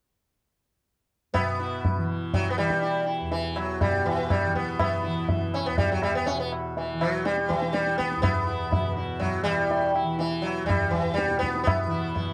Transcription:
1.34 3.81 B2 medium
1.34 2.04 B3 medium
1.34 tabla na medium
1.34 tabla ge medium
1.60 1.83 E4 soft
1.85 tabla tin medium
1.85 tabla ge medium
1.97 2.58 E3 medium
2.34 2.50 F#3 medium
2.34 tabla tin medium
2.34 tabla ge medium
2.51 2.58 B3 medium
2.58 4.43 E3 medium
2.58 3.04 G3 medium
2.58 tabla na soft
2.70 tabla ke medium
2.82 3.05 E4 soft
2.82 tabla tin medium
3.06 3.29 E4 soft
3.21 5.68 E2 medium
3.32 3.57 E3 medium
3.32 tabla tin medium
3.56 3.81 F#3 medium
3.56 tabla na medium
3.81 6.31 B2 soft
3.81 4.07 G3 medium
3.81 tabla na medium
3.81 tabla ge medium
4.06 4.31 E3 medium
4.30 4.55 G3 medium
4.30 tabla na medium
4.30 tabla ge medium
4.43 5.07 E3 medium
4.55 4.79 B3 medium
4.55 tabla ge soft
4.79 5.56 B3 medium
4.79 tabla na medium
4.79 tabla ge medium
5.03 6.92 E3 medium
5.03 5.26 E4 soft
5.29 tabla tin medium
5.29 tabla ge medium
5.54 5.66 C#4 medium
5.54 tabla na medium
5.66 8.16 E2 medium
5.66 5.78 B3 medium
5.78 5.89 G3 medium
5.78 tabla tin medium
5.78 tabla ge medium
5.92 6.03 F#3 medium
6.03 6.15 G3 medium
6.03 tabla na medium
6.15 6.27 B3 medium
6.26 6.39 C#4 medium
6.26 tabla tin medium
6.31 8.78 B2 medium
6.40 6.51 B3 medium
6.53 tabla na soft
6.77 7.02 E3 medium
6.77 tabla tin medium
6.92 7.54 E3 medium
7.01 7.25 F#3 medium
7.01 tabla na medium
7.25 7.50 G3 medium
7.25 tabla te medium
7.37 tabla te medium
7.49 7.74 E3 medium
7.49 tabla ke medium
7.54 9.41 E3 medium
7.62 tabla te medium
7.73 7.97 G3 medium
7.73 tabla te medium
7.86 tabla te soft
7.98 8.21 B3 medium
7.98 tabla ke medium
8.12 tabla te medium
8.16 10.63 E2 medium
8.22 8.92 B3 medium
8.22 tabla na medium
8.22 tabla ge medium
8.47 8.70 E4 soft
8.71 8.94 E4 soft
8.71 tabla tin medium
8.71 tabla ge medium
8.79 11.25 B2 medium
8.96 9.19 E4 soft
9.19 9.43 F#3 medium
9.19 tabla tin medium
9.19 tabla ge medium
9.41 10.02 E3 medium
9.41 9.90 G3 loud
9.46 tabla na medium
9.71 tabla tin medium
9.94 10.17 E4 soft
9.94 tabla na soft
10.02 11.86 E3 medium
10.19 10.44 E3 medium
10.19 tabla tin medium
10.42 10.66 F#3 medium
10.42 tabla na medium
10.64 12.33 E2 medium
10.64 10.92 G3 medium
10.70 tabla na medium
10.70 tabla ge medium
10.91 11.15 E3 medium
10.91 tabla ge soft
11.14 11.38 G3 medium
11.18 tabla te medium
11.25 12.33 B2 soft
11.31 tabla te medium
11.39 11.62 B3 medium
11.43 tabla ke medium
11.55 tabla te medium
11.63 12.33 B3 medium
11.63 tabla na medium
11.63 tabla ge medium
11.86 12.33 E3 medium
11.86 12.13 E4 soft
12.15 12.33 E4 soft
12.15 tabla tin medium
12.15 tabla ge medium

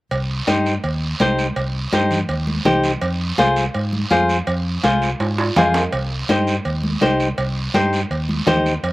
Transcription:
0.11 0.40 C2 medium
0.11 cowbell medium
0.11 long guiro medium
0.47 0.77 G2 medium
0.47 0.73 D#4 medium
0.47 0.73 G4 medium
0.47 0.73 C5 medium
0.47 cowbell medium
0.47 high conga medium
0.47 short guiro medium
0.66 short guiro medium
0.84 1.13 D#2 medium
0.84 cowbell medium
0.84 long guiro medium
1.20 1.49 C2 medium
1.20 1.46 D#4 medium
1.20 1.46 G4 medium
1.20 1.46 C5 medium
1.20 cowbell medium
1.20 high conga medium
1.20 short guiro medium
1.38 short guiro medium
1.56 1.86 C2 medium
1.56 cowbell medium
1.56 long guiro medium
1.92 2.22 G2 medium
1.92 2.18 D#4 medium
1.92 2.18 G4 medium
1.92 2.19 C5 medium
1.92 cowbell medium
1.92 high conga medium
1.92 short guiro medium
2.11 low conga medium
2.11 short guiro medium
2.29 2.58 D#2 loud
2.29 cowbell medium
2.29 long guiro medium
2.47 high conga medium
2.65 2.95 C2 medium
2.65 2.91 D#4 medium
2.65 2.91 G4 medium
2.65 2.91 C5 medium
2.65 cowbell medium
2.65 high conga medium
2.65 low conga medium
2.65 short guiro medium
2.84 short guiro medium
3.01 3.31 F2 loud
3.01 cowbell loud
3.01 long guiro medium
3.38 3.67 C2 medium
3.38 3.64 F4 medium
3.38 3.64 G#4 medium
3.38 3.64 C5 loud
3.38 cowbell medium
3.38 high conga medium
3.38 short guiro medium
3.56 short guiro medium
3.74 4.04 G#2 loud
3.74 cowbell medium
3.74 long guiro medium
3.93 high conga medium
4.11 4.40 F2 medium
4.11 4.36 F4 medium
4.11 4.36 G#4 medium
4.11 4.37 C5 medium
4.11 cowbell medium
4.11 high conga medium
4.11 short guiro medium
4.29 short guiro medium
4.47 4.76 F2 loud
4.47 cowbell loud
4.47 long guiro medium
4.83 5.13 C2 medium
4.83 5.09 F4 medium
4.83 5.09 G#4 medium
4.83 5.09 C5 medium
4.83 cowbell medium
4.83 high conga medium
4.83 short guiro medium
5.02 short guiro medium
5.20 5.49 G#2 medium
5.20 cowbell medium
5.20 high timbale medium
5.20 long guiro medium
5.38 high timbale medium
5.56 5.86 F2 medium
5.56 5.82 F4 medium
5.56 5.82 G#4 medium
5.56 5.82 C5 medium
5.56 cowbell medium
5.56 high conga medium
5.56 low conga medium
5.56 low timbale medium
5.56 short guiro medium
5.74 low timbale medium
5.74 short guiro medium
5.92 6.22 C2 medium
5.92 cowbell loud
5.92 long guiro medium
6.29 6.58 G2 medium
6.29 6.55 D#4 medium
6.29 6.55 G4 medium
6.29 6.55 C5 loud
6.29 cowbell medium
6.29 high conga medium
6.29 short guiro medium
6.47 short guiro medium
6.65 6.95 D#2 medium
6.65 cowbell medium
6.65 long guiro medium
6.83 high conga medium
7.01 7.31 C2 medium
7.01 7.27 D#4 medium
7.01 7.27 G4 medium
7.01 7.27 C5 medium
7.01 cowbell medium
7.01 high conga medium
7.01 short guiro medium
7.20 short guiro medium
7.38 7.67 C2 loud
7.38 cowbell loud
7.38 long guiro medium
7.74 8.03 G2 medium
7.74 8.00 D#4 medium
7.74 8.00 G4 medium
7.74 8.00 C5 loud
7.74 cowbell medium
7.74 high conga medium
7.74 short guiro medium
7.93 short guiro medium
8.11 8.40 D#2 medium
8.11 cowbell medium
8.11 long guiro medium
8.29 high conga medium
8.46 8.76 D#2 medium
8.46 8.72 D#4 medium
8.46 8.72 G4 medium
8.46 8.73 C5 loud
8.46 cowbell medium
8.46 high conga medium
8.46 low conga medium
8.46 low timbale medium
8.46 short guiro medium
8.66 short guiro medium
8.83 8.93 F2 medium
8.83 cowbell loud
8.83 long guiro medium

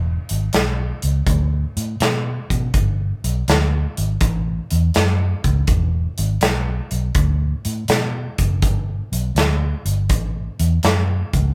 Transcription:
0.00 0.16 E1 medium
0.29 0.48 G#1 medium
0.29 closed hi-hat medium
0.53 0.91 B1 medium
0.53 snare loud
0.53 closed hi-hat medium
1.02 1.21 C#2 medium
1.02 closed hi-hat medium
1.27 1.64 D2 medium
1.27 kick medium
1.27 closed hi-hat medium
1.77 1.94 A2 medium
1.77 closed hi-hat medium
2.00 2.37 B2 medium
2.00 snare loud
2.00 closed hi-hat medium
2.50 2.68 B2 medium
2.50 kick medium
2.50 closed hi-hat medium
2.74 3.11 G1 medium
2.74 kick loud
2.74 closed hi-hat medium
3.24 3.41 B1 medium
3.24 closed hi-hat medium
3.48 3.85 D2 medium
3.48 snare loud
3.48 closed hi-hat medium
3.97 4.15 G#1 medium
3.97 closed hi-hat medium
4.21 4.58 A1 medium
4.21 kick loud
4.21 closed hi-hat medium
4.71 4.89 E2 medium
4.71 closed hi-hat medium
4.94 5.33 F#2 medium
4.94 snare loud
4.94 closed hi-hat medium
5.44 5.62 C#2 medium
5.44 kick medium
5.44 closed hi-hat medium
5.67 6.05 E1 medium
5.67 kick loud
5.67 closed hi-hat medium
6.18 6.36 G#1 medium
6.18 closed hi-hat medium
6.41 6.79 B1 medium
6.41 snare loud
6.41 closed hi-hat medium
6.91 7.09 B1 medium
6.91 closed hi-hat medium
7.15 7.53 D2 medium
7.15 kick loud
7.15 closed hi-hat medium
7.65 7.83 A2 medium
7.65 closed hi-hat medium
7.88 8.26 B2 medium
7.88 snare loud
7.88 closed hi-hat medium
8.38 8.63 F#1 medium
8.38 kick medium
8.38 closed hi-hat medium
8.62 9.00 G1 medium
8.62 kick medium
8.62 closed hi-hat medium
9.12 9.30 B1 medium
9.12 closed hi-hat medium
9.35 9.73 D2 medium
9.35 snare medium
9.35 closed hi-hat medium
9.85 10.10 G1 medium
9.85 closed hi-hat medium
10.09 10.48 A1 medium
10.09 kick loud
10.09 closed hi-hat medium
10.60 10.77 E2 medium
10.60 closed hi-hat medium
10.83 11.21 F#2 medium
10.83 snare loud
10.83 closed hi-hat medium
11.33 11.51 C#2 medium
11.33 kick medium
11.33 closed hi-hat medium

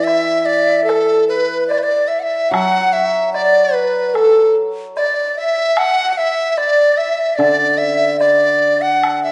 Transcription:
0.00 1.70 E3 soft
0.00 0.47 E5 medium
0.05 0.91 E5 medium
0.05 low woodblock soft
0.46 0.84 D5 medium
0.84 1.25 A4 medium
0.89 1.32 A4 medium
0.89 high woodblock soft
1.29 1.67 B4 medium
1.29 1.72 B4 medium
1.68 1.80 D5 medium
1.68 1.84 D5 medium
1.68 low woodblock soft
1.78 1.85 B4 medium
1.83 2.09 D5 medium
1.83 2.11 D5 medium
2.08 2.21 E5 medium
2.08 2.22 E5 medium
2.20 2.51 E5 medium
2.20 2.53 E5 medium
2.20 2.24 F#5 medium
2.49 4.96 F#3 medium
2.49 3.06 F#5 medium
2.49 2.94 F#5 medium
2.54 high woodblock medium
2.93 3.33 E5 medium
3.33 3.76 D5 medium
3.33 3.75 D5 medium
3.33 low woodblock soft
3.74 4.16 B4 medium
3.74 4.09 B4 medium
4.09 4.16 B4 soft
4.14 4.55 A4 medium
4.14 4.56 A4 medium
4.14 high woodblock soft
4.96 5.40 D5 medium
4.96 5.35 D5 medium
4.96 low woodblock soft
5.36 5.74 E5 medium
5.36 5.80 E5 medium
5.77 6.13 F#5 loud
5.77 6.21 F#5 medium
5.77 high woodblock medium
6.13 6.19 F#5 medium
6.17 6.59 E5 medium
6.17 6.58 E5 medium
6.57 6.99 D5 medium
6.57 7.00 D5 medium
6.57 low woodblock soft
6.97 7.37 E5 medium
6.97 7.39 E5 medium
7.36 9.32 D3 medium
7.36 7.79 D5 medium
7.36 7.80 D5 medium
7.40 high woodblock soft
7.78 8.19 E5 medium
7.78 8.13 E5 medium
8.13 8.22 E5 soft
8.20 8.83 D5 medium
8.20 8.84 D5 medium
8.20 low woodblock soft
8.81 9.23 F#5 medium
8.81 9.32 F#5 medium
9.03 high woodblock medium
9.23 9.32 E5 medium

